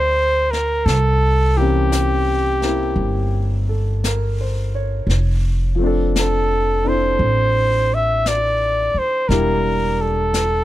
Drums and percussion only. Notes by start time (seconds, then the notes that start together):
0.53 snare
0.88 brush sweep, snare
1.92 brush sweep, snare, hi-hat pedal
2.62 snare
2.98 brush sweep
4.04 brush sweep, snare, hi-hat pedal
5.10 brush sweep, snare
6.16 brush sweep, snare, hi-hat pedal
7.20 brush sweep
8.26 brush sweep, snare, hi-hat pedal
9.30 brush sweep, snare
10.34 brush sweep, snare, hi-hat pedal